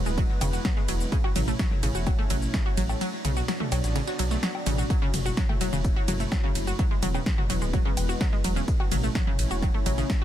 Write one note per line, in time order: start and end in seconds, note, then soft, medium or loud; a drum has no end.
0.00 1.10 G#3 medium
0.00 1.10 B3 medium
0.00 2.97 E4 medium
0.00 1.10 B4 medium
0.06 0.23 D1 loud
0.06 0.10 G#3 medium
0.06 shaker soft
0.18 0.24 F#3 loud
0.18 kick loud
0.18 ride medium
0.18 tambourine medium
0.18 shaker soft
0.41 0.58 E1 medium
0.41 0.48 C#3 loud
0.41 open hi-hat loud
0.41 ride medium
0.41 tambourine medium
0.41 low woodblock medium
0.41 shaker medium
0.53 0.59 F#4 medium
0.53 shaker soft
0.65 0.69 F#3 loud
0.65 kick loud
0.65 snare loud
0.65 ride medium
0.65 tambourine medium
0.65 shaker soft
0.77 0.81 G#3 medium
0.77 snare medium
0.88 1.06 E1 loud
0.88 0.95 F#3 loud
0.88 open hi-hat loud
0.88 ride medium
0.88 tambourine medium
0.88 shaker medium
1.00 shaker soft
1.12 1.18 C#3 loud
1.12 2.99 A3 medium
1.12 2.99 C#4 medium
1.12 2.99 C#5 medium
1.12 kick loud
1.12 ride medium
1.12 tambourine medium
1.12 shaker soft
1.24 1.30 F#4 medium
1.24 low woodblock soft
1.36 1.53 A1 loud
1.36 1.40 F#3 loud
1.36 open hi-hat loud
1.36 open hi-hat medium
1.36 mid tom medium
1.36 ride medium
1.36 shaker medium
1.48 1.51 A3 medium
1.48 shaker soft
1.59 1.66 F#3 loud
1.59 kick loud
1.59 snare loud
1.59 ride medium
1.59 tambourine medium
1.59 shaker soft
1.71 mid tom medium
1.83 1.92 A1 loud
1.83 1.89 C#3 loud
1.83 open hi-hat loud
1.83 ride medium
1.83 tambourine medium
1.83 shaker medium
1.95 2.12 E1 medium
1.95 2.01 F#4 medium
1.95 shaker soft
2.07 2.10 F#3 loud
2.07 kick loud
2.07 ride medium
2.07 tambourine medium
2.07 low woodblock medium
2.07 shaker soft
2.19 2.22 A3 medium
2.30 2.47 A1 loud
2.30 2.37 F#3 loud
2.30 open hi-hat loud
2.30 mid tom medium
2.30 ride medium
2.30 shaker medium
2.42 shaker soft
2.54 2.60 C#3 loud
2.54 kick loud
2.54 snare loud
2.54 ride medium
2.54 tambourine medium
2.54 shaker soft
2.66 2.72 F#4 medium
2.77 2.95 A1 loud
2.77 2.81 F#3 loud
2.77 open hi-hat loud
2.77 ride medium
2.77 shaker medium
2.89 2.93 A3 medium
2.89 low woodblock medium
2.89 shaker soft
3.01 3.07 F#3 loud
3.01 4.88 B3 medium
3.01 4.88 D4 medium
3.01 6.75 F#4 medium
3.01 4.88 D5 medium
3.01 ride medium
3.01 tambourine medium
3.01 shaker soft
3.25 3.42 B1 loud
3.25 3.31 C#3 loud
3.25 open hi-hat loud
3.25 mid tom medium
3.25 ride medium
3.25 tambourine medium
3.25 shaker medium
3.37 3.43 F#4 medium
3.37 shaker soft
3.48 3.52 F#3 loud
3.48 snare loud
3.48 ride medium
3.48 tambourine loud
3.48 shaker soft
3.60 3.64 A3 medium
3.60 mid tom medium
3.72 3.81 B1 loud
3.72 3.78 F#3 loud
3.72 snare loud
3.72 open hi-hat loud
3.72 ride medium
3.72 tambourine medium
3.72 low woodblock medium
3.72 shaker medium
3.84 4.01 A1 medium
3.84 snare loud
3.84 tambourine medium
3.84 shaker medium
3.96 4.02 C#3 loud
3.96 snare loud
3.96 ride medium
3.96 tambourine medium
3.96 shaker soft
4.08 4.14 F#4 medium
4.08 snare loud
4.08 tambourine medium
4.19 4.36 B1 medium
4.19 4.23 F#3 loud
4.19 snare loud
4.19 open hi-hat loud
4.19 ride medium
4.19 tambourine medium
4.19 shaker medium
4.31 4.35 A3 medium
4.31 snare loud
4.31 tambourine medium
4.31 shaker soft
4.43 4.49 F#3 loud
4.43 snare loud
4.43 ride medium
4.43 tambourine medium
4.43 shaker soft
4.55 low woodblock medium
4.66 4.83 A1 loud
4.66 4.73 C#3 loud
4.66 snare loud
4.66 open hi-hat loud
4.66 mid tom medium
4.66 ride medium
4.66 tambourine medium
4.66 shaker medium
4.78 4.85 F#4 medium
4.78 shaker soft
4.90 4.96 F#3 loud
4.90 6.77 A3 medium
4.90 8.64 E4 medium
4.90 6.77 C#5 loud
4.90 kick loud
4.90 ride medium
4.90 tambourine medium
4.90 shaker soft
5.02 5.08 C#3 loud
5.14 5.31 F#1 loud
5.14 open hi-hat medium
5.14 open hi-hat loud
5.14 mid tom medium
5.14 ride medium
5.14 shaker medium
5.26 5.32 F#4 medium
5.26 shaker soft
5.37 5.41 F#3 loud
5.37 kick loud
5.37 snare loud
5.37 ride medium
5.37 tambourine loud
5.37 shaker soft
5.49 5.53 A3 medium
5.49 mid tom medium
5.49 low woodblock soft
5.61 5.69 F#1 loud
5.61 5.67 F#3 loud
5.61 open hi-hat loud
5.61 ride medium
5.61 tambourine medium
5.61 shaker medium
5.73 5.90 E1 medium
5.73 5.79 C#3 loud
5.73 shaker soft
5.84 kick loud
5.84 ride medium
5.84 tambourine medium
5.84 shaker soft
5.96 6.03 F#4 medium
6.08 6.25 F#1 loud
6.08 6.12 F#3 loud
6.08 open hi-hat loud
6.08 mid tom medium
6.08 ride medium
6.08 tambourine medium
6.08 shaker medium
6.20 6.24 A3 medium
6.20 closed hi-hat soft
6.20 shaker soft
6.32 6.38 F#3 loud
6.32 kick loud
6.32 snare loud
6.32 ride medium
6.32 tambourine medium
6.32 low woodblock medium
6.32 shaker soft
6.44 6.50 C#3 loud
6.55 6.72 F#1 loud
6.55 open hi-hat loud
6.55 ride medium
6.55 tambourine medium
6.55 shaker medium
6.67 6.74 F#4 medium
6.67 shaker soft
6.79 6.83 F#3 loud
6.79 8.66 G#3 medium
6.79 8.66 B3 medium
6.79 8.66 B4 medium
6.79 kick loud
6.79 ride medium
6.79 tambourine medium
6.79 shaker soft
6.91 6.95 G#3 medium
7.03 7.20 E1 loud
7.03 7.09 F#3 loud
7.03 open hi-hat loud
7.03 mid tom medium
7.03 ride medium
7.03 tambourine medium
7.03 shaker medium
7.14 7.21 C#3 loud
7.14 low woodblock medium
7.14 shaker soft
7.26 kick loud
7.26 snare loud
7.26 ride soft
7.26 tambourine medium
7.26 shaker soft
7.38 7.44 F#4 medium
7.38 mid tom medium
7.50 7.58 E1 loud
7.50 7.54 F#3 loud
7.50 open hi-hat loud
7.50 ride medium
7.50 tambourine medium
7.50 shaker medium
7.62 7.79 D1 medium
7.62 7.65 G#3 medium
7.62 shaker soft
7.73 7.80 F#3 loud
7.73 kick loud
7.73 ride medium
7.73 tambourine medium
7.73 shaker soft
7.85 7.92 C#3 loud
7.97 8.14 E1 medium
7.97 open hi-hat loud
7.97 ride medium
7.97 tambourine medium
7.97 low woodblock medium
7.97 shaker medium
8.09 8.15 F#4 medium
8.09 shaker soft
8.21 8.25 F#3 loud
8.21 kick loud
8.21 snare loud
8.21 ride medium
8.21 tambourine medium
8.21 shaker soft
8.33 8.36 G#3 medium
8.33 snare medium
8.44 8.61 E1 loud
8.44 8.51 F#3 loud
8.44 open hi-hat loud
8.44 ride medium
8.44 tambourine medium
8.44 shaker medium
8.56 8.63 C#3 loud
8.56 shaker soft
8.68 10.24 A3 medium
8.68 10.24 C#4 medium
8.68 10.24 E4 medium
8.68 10.24 C#5 medium
8.68 kick loud
8.68 ride medium
8.68 tambourine medium
8.68 shaker soft
8.80 8.86 F#4 medium
8.80 low woodblock medium
8.92 9.09 A1 loud
8.92 8.95 F#3 loud
8.92 open hi-hat loud
8.92 open hi-hat medium
8.92 mid tom loud
8.92 ride medium
8.92 shaker medium
9.04 9.07 A3 medium
9.04 shaker soft
9.15 9.22 F#3 loud
9.15 kick loud
9.15 snare loud
9.15 ride medium
9.15 tambourine loud
9.15 shaker soft
9.27 9.33 C#3 loud
9.27 mid tom medium
9.39 9.47 A1 loud
9.39 open hi-hat loud
9.39 ride medium
9.39 tambourine medium
9.39 shaker medium
9.51 9.68 E1 medium
9.51 9.57 F#4 medium
9.51 shaker soft
9.62 9.66 F#3 loud
9.62 kick loud
9.62 ride medium
9.62 tambourine medium
9.62 low woodblock medium
9.62 shaker soft
9.74 9.78 A3 medium
9.86 10.03 A1 medium
9.86 9.92 F#3 loud
9.86 open hi-hat loud
9.86 mid tom medium
9.86 ride medium
9.86 tambourine medium
9.86 shaker medium
9.98 10.04 C#3 loud
9.98 closed hi-hat soft
9.98 shaker soft
10.10 kick loud
10.10 snare loud
10.10 ride soft
10.10 tambourine medium
10.10 shaker soft